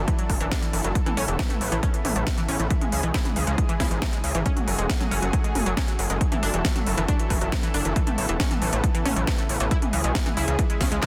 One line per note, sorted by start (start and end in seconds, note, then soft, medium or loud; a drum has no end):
0.00 0.92 F#3 medium
0.00 0.94 D4 medium
0.00 4.42 E4 medium
0.00 2.67 A4 medium
0.08 0.10 E3 medium
0.08 kick loud
0.08 closed hi-hat medium
0.19 0.23 F#3 medium
0.19 closed hi-hat medium
0.30 0.38 F#1 medium
0.30 kick medium
0.30 open hi-hat loud
0.40 0.49 F#1 medium
0.40 0.45 E3 loud
0.40 closed hi-hat medium
0.51 0.58 D4 loud
0.51 kick loud
0.51 snare loud
0.51 closed hi-hat medium
0.62 0.65 E3 medium
0.62 closed hi-hat medium
0.73 0.82 F#1 medium
0.73 0.76 E3 medium
0.73 open hi-hat medium
0.84 0.93 F#1 medium
0.84 0.89 F#3 medium
0.84 closed hi-hat medium
0.95 6.17 C#3 medium
0.95 2.69 B3 medium
0.95 kick loud
0.95 closed hi-hat medium
1.06 1.11 E3 loud
1.06 closed hi-hat medium
1.06 mid tom medium
1.17 1.25 A1 medium
1.17 1.24 C#4 loud
1.17 open hi-hat loud
1.28 1.36 E1 medium
1.28 1.31 E3 medium
1.28 closed hi-hat medium
1.39 1.42 E3 medium
1.39 kick loud
1.39 snare loud
1.39 closed hi-hat medium
1.50 1.55 A3 medium
1.50 closed hi-hat soft
1.50 mid tom medium
1.61 1.69 A1 medium
1.61 open hi-hat medium
1.72 1.80 A1 medium
1.72 1.76 E3 loud
1.72 closed hi-hat soft
1.83 1.90 C#4 loud
1.83 kick loud
1.83 closed hi-hat medium
1.94 1.97 E3 medium
1.94 closed hi-hat medium
2.05 2.13 A1 medium
2.05 2.08 E3 medium
2.05 open hi-hat loud
2.05 mid tom medium
2.16 2.24 A1 medium
2.16 2.20 A3 medium
2.16 closed hi-hat soft
2.27 kick loud
2.27 snare loud
2.27 closed hi-hat medium
2.38 2.42 E3 loud
2.38 closed hi-hat soft
2.49 2.57 A1 medium
2.49 2.55 C#4 loud
2.49 open hi-hat loud
2.59 2.68 A1 medium
2.59 2.62 E3 medium
2.59 closed hi-hat medium
2.70 2.73 E3 medium
2.70 4.44 G#3 medium
2.70 4.44 G#4 medium
2.70 kick loud
2.70 closed hi-hat medium
2.81 2.86 G#3 medium
2.81 closed hi-hat soft
2.81 mid tom medium
2.92 3.01 C#2 medium
2.92 open hi-hat loud
3.03 3.12 B1 medium
3.03 3.08 E3 loud
3.03 closed hi-hat soft
3.14 3.21 E4 loud
3.14 kick loud
3.14 snare loud
3.14 closed hi-hat medium
3.25 3.28 E3 medium
3.25 closed hi-hat soft
3.25 mid tom medium
3.36 3.44 C#2 loud
3.36 3.39 E3 medium
3.36 open hi-hat medium
3.47 3.55 C#2 medium
3.47 3.52 G#3 medium
3.47 closed hi-hat soft
3.58 kick loud
3.58 closed hi-hat medium
3.69 3.74 E3 loud
3.69 closed hi-hat soft
3.80 3.88 C#2 medium
3.80 3.87 E4 loud
3.80 kick medium
3.80 snare medium
3.80 open hi-hat loud
3.91 3.99 G#1 medium
3.91 3.94 E3 medium
3.91 closed hi-hat soft
4.02 4.05 E3 medium
4.02 kick loud
4.02 snare loud
4.02 closed hi-hat medium
4.13 4.17 G#3 medium
4.13 closed hi-hat soft
4.24 4.32 C#2 medium
4.24 open hi-hat medium
4.35 4.43 G#1 medium
4.35 4.39 E3 loud
4.35 closed hi-hat soft
4.46 6.19 A3 medium
4.46 4.52 C#4 loud
4.46 6.19 F#4 medium
4.46 6.19 G#4 medium
4.46 kick loud
4.46 closed hi-hat medium
4.57 4.59 F#3 medium
4.57 closed hi-hat soft
4.57 mid tom medium
4.68 4.76 F#1 medium
4.68 4.70 F#3 medium
4.68 open hi-hat loud
4.78 4.87 E1 medium
4.78 4.83 G#3 medium
4.78 closed hi-hat soft
4.90 kick loud
4.90 snare loud
4.90 closed hi-hat medium
5.00 5.05 F#3 loud
5.00 closed hi-hat soft
5.00 mid tom medium
5.11 5.20 F#1 medium
5.11 5.18 C#4 loud
5.11 open hi-hat medium
5.22 5.31 F#1 medium
5.22 5.25 F#3 medium
5.22 closed hi-hat soft
5.33 5.36 F#3 medium
5.33 kick loud
5.33 closed hi-hat medium
5.44 5.49 G#3 medium
5.44 closed hi-hat soft
5.55 5.63 F#1 medium
5.55 open hi-hat loud
5.55 mid tom medium
5.66 5.74 F#1 medium
5.66 5.71 F#3 loud
5.66 closed hi-hat soft
5.77 5.84 C#4 loud
5.77 kick loud
5.77 snare loud
5.77 closed hi-hat medium
5.88 5.91 F#3 medium
5.88 closed hi-hat soft
5.99 6.07 F#1 medium
5.99 6.02 F#3 medium
5.99 open hi-hat medium
6.10 6.18 F#1 medium
6.10 6.14 G#3 medium
6.10 closed hi-hat soft
6.21 7.94 D3 medium
6.21 7.94 F#3 medium
6.21 9.68 E4 medium
6.21 9.68 A4 medium
6.21 kick loud
6.21 closed hi-hat medium
6.32 6.36 E3 loud
6.32 closed hi-hat medium
6.32 mid tom medium
6.43 6.51 F#1 medium
6.43 6.50 D4 loud
6.43 open hi-hat loud
6.54 6.62 E1 medium
6.54 6.56 E3 medium
6.54 closed hi-hat medium
6.65 6.67 E3 medium
6.65 kick loud
6.65 snare loud
6.65 closed hi-hat medium
6.76 6.80 F#3 medium
6.76 closed hi-hat medium
6.76 mid tom medium
6.87 6.95 F#1 medium
6.87 open hi-hat medium
6.98 7.06 F#1 medium
6.98 7.02 E3 loud
6.98 closed hi-hat medium
7.08 7.15 D4 loud
7.08 kick loud
7.08 closed hi-hat medium
7.19 7.22 E3 medium
7.19 closed hi-hat medium
7.30 7.39 F#1 loud
7.30 7.33 E3 medium
7.30 kick medium
7.30 open hi-hat loud
7.41 7.50 F#1 medium
7.41 7.46 F#3 medium
7.41 closed hi-hat medium
7.52 kick loud
7.52 snare loud
7.52 closed hi-hat medium
7.63 7.68 E3 loud
7.63 closed hi-hat medium
7.74 7.82 F#1 medium
7.74 7.81 D4 loud
7.74 open hi-hat medium
7.85 7.93 F#1 medium
7.85 7.88 E3 medium
7.85 closed hi-hat medium
7.96 11.06 C#3 medium
7.96 7.99 E3 medium
7.96 9.70 B3 medium
7.96 kick loud
7.96 closed hi-hat medium
8.07 8.11 A3 medium
8.07 closed hi-hat medium
8.07 mid tom medium
8.18 8.26 A1 medium
8.18 open hi-hat loud
8.29 8.37 E1 medium
8.29 8.33 E3 loud
8.29 closed hi-hat medium
8.40 8.47 C#4 loud
8.40 kick loud
8.40 snare loud
8.40 closed hi-hat medium
8.51 8.54 E3 medium
8.51 closed hi-hat medium
8.51 mid tom medium
8.62 8.70 A1 medium
8.62 8.64 E3 medium
8.62 open hi-hat medium
8.73 8.81 A1 medium
8.73 8.77 A3 medium
8.73 closed hi-hat medium
8.84 kick loud
8.84 closed hi-hat medium
8.94 8.99 E3 loud
8.94 closed hi-hat medium
9.05 9.14 A1 medium
9.05 9.12 C#4 loud
9.05 open hi-hat loud
9.05 mid tom medium
9.16 9.25 A1 medium
9.16 9.19 E3 medium
9.16 closed hi-hat medium
9.27 9.30 E3 medium
9.27 kick loud
9.27 snare loud
9.27 closed hi-hat medium
9.38 9.43 A3 medium
9.38 closed hi-hat medium
9.49 9.58 A1 loud
9.49 open hi-hat medium
9.60 9.69 A1 medium
9.60 9.65 E3 loud
9.60 closed hi-hat medium
9.71 11.06 G#3 medium
9.71 9.78 E4 loud
9.71 11.06 E4 medium
9.71 11.06 G#4 medium
9.71 kick loud
9.71 closed hi-hat medium
9.82 9.85 E3 medium
9.82 closed hi-hat medium
9.82 mid tom medium
9.93 10.01 C#2 medium
9.93 9.96 E3 medium
9.93 open hi-hat loud
10.04 10.12 B1 medium
10.04 10.09 G#3 medium
10.04 closed hi-hat medium
10.15 kick loud
10.15 snare loud
10.15 closed hi-hat loud
10.26 10.30 E3 loud
10.26 closed hi-hat medium
10.26 mid tom medium
10.37 10.45 C#2 loud
10.37 10.44 E4 loud
10.37 open hi-hat medium
10.48 10.56 C#2 medium
10.48 10.51 E3 medium
10.48 closed hi-hat medium
10.59 10.62 E3 medium
10.59 kick loud
10.59 closed hi-hat medium
10.70 10.74 G#3 medium
10.70 closed hi-hat medium
10.81 10.89 C#2 medium
10.81 10.85 C#4 medium
10.81 kick medium
10.81 snare medium
10.81 open hi-hat loud
10.92 11.00 C#2 medium
10.92 10.96 G#3 loud
10.92 closed hi-hat medium
11.03 11.06 E3 loud
11.03 kick loud
11.03 snare loud
11.03 clap loud
11.03 closed hi-hat loud